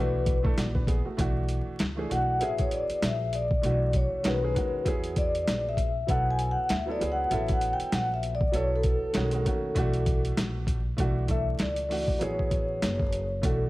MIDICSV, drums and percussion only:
0, 0, Header, 1, 2, 480
1, 0, Start_track
1, 0, Tempo, 612245
1, 929, Time_signature, 4, 2, 24, 8
1, 10738, End_track
2, 0, Start_track
2, 0, Title_t, "Drums"
2, 206, Note_on_c, 9, 42, 72
2, 208, Note_on_c, 9, 36, 98
2, 285, Note_off_c, 9, 42, 0
2, 287, Note_off_c, 9, 36, 0
2, 350, Note_on_c, 9, 36, 97
2, 429, Note_off_c, 9, 36, 0
2, 452, Note_on_c, 9, 38, 109
2, 456, Note_on_c, 9, 42, 98
2, 531, Note_off_c, 9, 38, 0
2, 535, Note_off_c, 9, 42, 0
2, 587, Note_on_c, 9, 36, 96
2, 666, Note_off_c, 9, 36, 0
2, 684, Note_on_c, 9, 36, 87
2, 690, Note_on_c, 9, 42, 65
2, 762, Note_off_c, 9, 36, 0
2, 768, Note_off_c, 9, 42, 0
2, 928, Note_on_c, 9, 36, 108
2, 930, Note_on_c, 9, 42, 89
2, 1006, Note_off_c, 9, 36, 0
2, 1008, Note_off_c, 9, 42, 0
2, 1164, Note_on_c, 9, 42, 63
2, 1243, Note_off_c, 9, 42, 0
2, 1404, Note_on_c, 9, 42, 78
2, 1411, Note_on_c, 9, 38, 103
2, 1482, Note_off_c, 9, 42, 0
2, 1490, Note_off_c, 9, 38, 0
2, 1655, Note_on_c, 9, 42, 67
2, 1734, Note_off_c, 9, 42, 0
2, 1888, Note_on_c, 9, 42, 84
2, 1966, Note_off_c, 9, 42, 0
2, 2026, Note_on_c, 9, 42, 52
2, 2034, Note_on_c, 9, 36, 81
2, 2105, Note_off_c, 9, 42, 0
2, 2112, Note_off_c, 9, 36, 0
2, 2127, Note_on_c, 9, 42, 68
2, 2205, Note_off_c, 9, 42, 0
2, 2271, Note_on_c, 9, 42, 54
2, 2349, Note_off_c, 9, 42, 0
2, 2371, Note_on_c, 9, 38, 111
2, 2375, Note_on_c, 9, 42, 96
2, 2449, Note_off_c, 9, 38, 0
2, 2454, Note_off_c, 9, 42, 0
2, 2609, Note_on_c, 9, 42, 63
2, 2687, Note_off_c, 9, 42, 0
2, 2750, Note_on_c, 9, 36, 87
2, 2828, Note_off_c, 9, 36, 0
2, 2849, Note_on_c, 9, 42, 78
2, 2928, Note_off_c, 9, 42, 0
2, 3084, Note_on_c, 9, 42, 59
2, 3090, Note_on_c, 9, 36, 82
2, 3162, Note_off_c, 9, 42, 0
2, 3169, Note_off_c, 9, 36, 0
2, 3325, Note_on_c, 9, 42, 84
2, 3332, Note_on_c, 9, 38, 105
2, 3403, Note_off_c, 9, 42, 0
2, 3411, Note_off_c, 9, 38, 0
2, 3577, Note_on_c, 9, 42, 67
2, 3578, Note_on_c, 9, 36, 78
2, 3655, Note_off_c, 9, 42, 0
2, 3656, Note_off_c, 9, 36, 0
2, 3807, Note_on_c, 9, 36, 94
2, 3809, Note_on_c, 9, 42, 81
2, 3885, Note_off_c, 9, 36, 0
2, 3887, Note_off_c, 9, 42, 0
2, 3948, Note_on_c, 9, 42, 54
2, 4026, Note_off_c, 9, 42, 0
2, 4047, Note_on_c, 9, 42, 71
2, 4049, Note_on_c, 9, 36, 96
2, 4125, Note_off_c, 9, 42, 0
2, 4127, Note_off_c, 9, 36, 0
2, 4193, Note_on_c, 9, 42, 52
2, 4272, Note_off_c, 9, 42, 0
2, 4293, Note_on_c, 9, 38, 118
2, 4297, Note_on_c, 9, 42, 100
2, 4371, Note_off_c, 9, 38, 0
2, 4375, Note_off_c, 9, 42, 0
2, 4525, Note_on_c, 9, 36, 81
2, 4531, Note_on_c, 9, 42, 67
2, 4603, Note_off_c, 9, 36, 0
2, 4609, Note_off_c, 9, 42, 0
2, 4770, Note_on_c, 9, 36, 95
2, 4771, Note_on_c, 9, 42, 83
2, 4848, Note_off_c, 9, 36, 0
2, 4850, Note_off_c, 9, 42, 0
2, 5008, Note_on_c, 9, 42, 67
2, 5086, Note_off_c, 9, 42, 0
2, 5246, Note_on_c, 9, 42, 89
2, 5254, Note_on_c, 9, 38, 109
2, 5325, Note_off_c, 9, 42, 0
2, 5332, Note_off_c, 9, 38, 0
2, 5498, Note_on_c, 9, 42, 74
2, 5577, Note_off_c, 9, 42, 0
2, 5731, Note_on_c, 9, 42, 81
2, 5809, Note_off_c, 9, 42, 0
2, 5868, Note_on_c, 9, 42, 53
2, 5876, Note_on_c, 9, 36, 82
2, 5947, Note_off_c, 9, 42, 0
2, 5954, Note_off_c, 9, 36, 0
2, 5969, Note_on_c, 9, 42, 71
2, 6047, Note_off_c, 9, 42, 0
2, 6114, Note_on_c, 9, 42, 54
2, 6192, Note_off_c, 9, 42, 0
2, 6212, Note_on_c, 9, 38, 124
2, 6217, Note_on_c, 9, 42, 104
2, 6291, Note_off_c, 9, 38, 0
2, 6295, Note_off_c, 9, 42, 0
2, 6452, Note_on_c, 9, 42, 68
2, 6530, Note_off_c, 9, 42, 0
2, 6591, Note_on_c, 9, 36, 96
2, 6669, Note_off_c, 9, 36, 0
2, 6691, Note_on_c, 9, 42, 88
2, 6770, Note_off_c, 9, 42, 0
2, 6926, Note_on_c, 9, 42, 64
2, 6931, Note_on_c, 9, 36, 79
2, 7005, Note_off_c, 9, 42, 0
2, 7010, Note_off_c, 9, 36, 0
2, 7164, Note_on_c, 9, 42, 81
2, 7171, Note_on_c, 9, 38, 112
2, 7242, Note_off_c, 9, 42, 0
2, 7250, Note_off_c, 9, 38, 0
2, 7302, Note_on_c, 9, 42, 64
2, 7380, Note_off_c, 9, 42, 0
2, 7417, Note_on_c, 9, 42, 80
2, 7418, Note_on_c, 9, 36, 84
2, 7496, Note_off_c, 9, 42, 0
2, 7497, Note_off_c, 9, 36, 0
2, 7647, Note_on_c, 9, 36, 90
2, 7650, Note_on_c, 9, 42, 89
2, 7725, Note_off_c, 9, 36, 0
2, 7728, Note_off_c, 9, 42, 0
2, 7789, Note_on_c, 9, 42, 51
2, 7867, Note_off_c, 9, 42, 0
2, 7889, Note_on_c, 9, 42, 66
2, 7890, Note_on_c, 9, 36, 101
2, 7967, Note_off_c, 9, 42, 0
2, 7968, Note_off_c, 9, 36, 0
2, 8034, Note_on_c, 9, 42, 58
2, 8112, Note_off_c, 9, 42, 0
2, 8133, Note_on_c, 9, 38, 114
2, 8137, Note_on_c, 9, 42, 94
2, 8211, Note_off_c, 9, 38, 0
2, 8215, Note_off_c, 9, 42, 0
2, 8365, Note_on_c, 9, 36, 86
2, 8371, Note_on_c, 9, 42, 69
2, 8443, Note_off_c, 9, 36, 0
2, 8449, Note_off_c, 9, 42, 0
2, 8609, Note_on_c, 9, 36, 99
2, 8610, Note_on_c, 9, 42, 84
2, 8687, Note_off_c, 9, 36, 0
2, 8688, Note_off_c, 9, 42, 0
2, 8846, Note_on_c, 9, 42, 63
2, 8851, Note_on_c, 9, 36, 71
2, 8925, Note_off_c, 9, 42, 0
2, 8929, Note_off_c, 9, 36, 0
2, 9084, Note_on_c, 9, 42, 78
2, 9091, Note_on_c, 9, 38, 99
2, 9163, Note_off_c, 9, 42, 0
2, 9170, Note_off_c, 9, 38, 0
2, 9222, Note_on_c, 9, 42, 60
2, 9301, Note_off_c, 9, 42, 0
2, 9337, Note_on_c, 9, 46, 50
2, 9415, Note_off_c, 9, 46, 0
2, 9469, Note_on_c, 9, 36, 74
2, 9547, Note_off_c, 9, 36, 0
2, 9572, Note_on_c, 9, 42, 79
2, 9651, Note_off_c, 9, 42, 0
2, 9716, Note_on_c, 9, 36, 75
2, 9794, Note_off_c, 9, 36, 0
2, 9809, Note_on_c, 9, 42, 65
2, 9810, Note_on_c, 9, 36, 95
2, 9888, Note_off_c, 9, 36, 0
2, 9888, Note_off_c, 9, 42, 0
2, 10054, Note_on_c, 9, 38, 113
2, 10058, Note_on_c, 9, 42, 93
2, 10132, Note_off_c, 9, 38, 0
2, 10136, Note_off_c, 9, 42, 0
2, 10188, Note_on_c, 9, 36, 87
2, 10267, Note_off_c, 9, 36, 0
2, 10290, Note_on_c, 9, 42, 64
2, 10369, Note_off_c, 9, 42, 0
2, 10530, Note_on_c, 9, 36, 98
2, 10531, Note_on_c, 9, 42, 86
2, 10608, Note_off_c, 9, 36, 0
2, 10610, Note_off_c, 9, 42, 0
2, 10738, End_track
0, 0, End_of_file